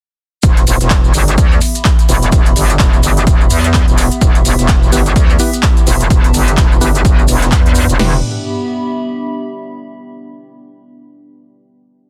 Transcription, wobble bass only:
0.43 E1
0.67 E1
0.81 E1
1.14 G1
1.38 D2
2.09 E1
2.32 E1
2.56 G1
2.80 E1
3.03 G1
3.27 E1
3.50 E2
3.88 E1
4.21 E1
4.45 E1
4.59 E1
4.92 G1
5.16 D2
5.87 E1
6.10 E1
6.34 G1
6.58 E1
6.81 G1
7.05 F#1
7.28 E1
7.52 E2
7.89 E1
7.99 E1

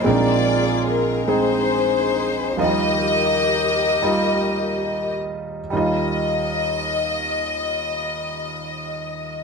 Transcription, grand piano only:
0.04 A#1 A#2 G#3 C4 D4 A#4
0.12 D#4
1.28 G#3 C4 D#4 G#4
2.57 D#2 D#3 F3 D#4 F4 D#5
2.64 G3
4.02 G3 D#4 F4 D#5
5.70 D#2 G3 D#4 F4
5.77 D#5

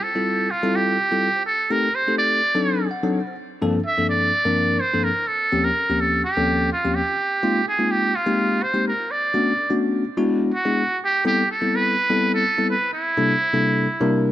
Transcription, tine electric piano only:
0.04 F4 C5
0.15 G3 C4 E4 F4 A4
0.63 G3 C4 E4 F4 A4
1.11 G3 C4 E4 F4 A4
1.35 F4 C5
1.70 A3 C4 D#4 G4 A4
1.95 G4 C5
2.08 A3 C4 D#4 G4 A4
2.55 F#3 C4 D4 D#4 A4
2.91 F#5
3.03 F#3 C4 D4 D#4 A4
3.27 D#4 C5
3.62 G2 F3 A#3 C4 D4 A4
3.86 D4 A4
3.98 G2 F3 A#3 C4 D4 A4
4.45 G2 F3 A#3 C4 D4 A#4
4.94 G2 F3 A#3 C4 D4 A4
5.18 D4 E4
5.52 D#2 F3 A#3 C4 C#4 G4
5.77 C#4 A4
5.90 D#2 F3 A#3 C4 C#4 G4
6.37 D#2 F3 A#3 C4 C#4 A4
6.84 D#2 F3 A#3 C4 C#4 G4
7.08 C#4 F4
7.43 G#3 A#3 C4 D#4 F4
7.67 D#4 G#4
7.79 G#3 A#3 C4 D#4 F4
8.26 G#3 A#3 C4 D#4 G4
8.74 G#3 A#3 C4 D#4 G4
8.98 D#4 F4
9.34 A3 B3 C#4 D4 F#4
9.58 D4 A4
9.70 A3 B3 C#4 D4 F#4
10.17 G#3 B3 D4 E4 F#4
10.65 G#3 B3 D4 E4 G#4
10.91 E4 F#4
11.25 G3 B3 C4 E4 A4
11.49 E4 A4
11.61 G3 B3 C4 E4 A4
12.10 G3 B3 C4 E4 A4
12.58 G3 B3 C4 E4 A4
12.82 E4 C5
13.17 C3 G3 A#3 D4 E4 A4
13.41 E4 C5
13.53 C3 G3 A#3 D4 E4 A4
14.00 C3 G3 A#3 D4 E4 A#4

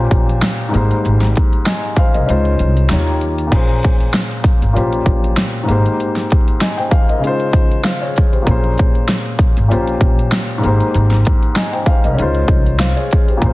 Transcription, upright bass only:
0.12 A#1
0.74 G#1
1.05 G#1
2.15 C2
2.29 C#2
2.60 C2
2.91 D#2
3.52 A#1
4.62 G#1
4.76 A#1
5.06 A#1
5.69 G#1
8.47 A#1
9.57 G#1
9.71 A#1
10.01 A#1
10.64 G#1
10.95 G#1
12.05 C2
12.19 C#2
13.42 A#1

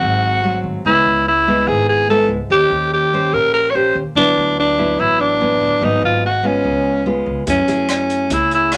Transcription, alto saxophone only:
Already playing: F#4
0.86 E4
1.28 E4
1.67 G#4
1.89 G#4
2.10 A4
2.52 G4
2.94 G4
3.33 A#4
3.54 A#4
3.70 C#5
3.75 C5
4.16 D4
4.59 D4
5.00 E4
5.20 D4
5.84 D#4
6.05 F4
6.26 F#4
6.46 C#4
7.49 C#4
7.90 C#4
8.33 E4
8.54 E4

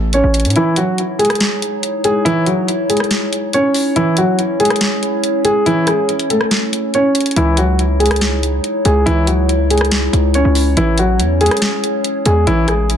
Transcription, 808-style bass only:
Already playing: A1
0.24 A1
0.45 A2
7.36 C#2
8.85 C#2
9.07 C#2
10.13 C#2
10.45 C#2
10.77 A1
11.19 E2
12.26 E2
12.47 A1

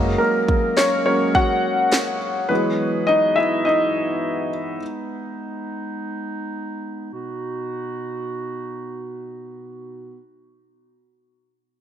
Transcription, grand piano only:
Already playing: F#3 G#3 A#3
0.18 A#3 A#4
0.77 C#4 C#5
1.05 F#3 G#3 A#3 C#4 C#5
1.35 F#4 F#5
2.49 E3 F#3 G#3 B3 B4
3.07 D#4 D#5
3.36 E4 E5
3.65 D#4 D#5

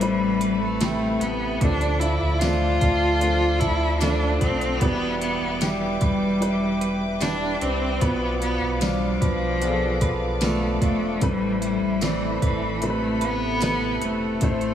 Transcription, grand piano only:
Already playing: C3 E4 B4
0.00 A3 C4 E4 B4
0.82 C3 A3 E4 G4
1.63 A2 F3 A3 D4 A4
2.42 F3 A3 D4 A4
3.22 F3 A3 D4 A4
4.02 F3 A3 D4 A4
4.81 B2 G3 D4 E4 B4
5.60 G3 D4 E4 G4
6.41 G3 D4 E4 B4
7.21 G3 D4 E4 G4
8.01 B2 F3 B3 D4 B4
8.81 F3 B3 D4 F4
9.62 F3 B3 D4 G#4
9.70 A4
10.41 F3 B3 D4 A4
11.22 A3 C4 E4 B4
12.01 A3 C4 E4 D5
12.82 C3 A3 E4 B4
12.90 B4
13.62 C3 A3 E4 B4
14.43 A3 C4 E4 C5

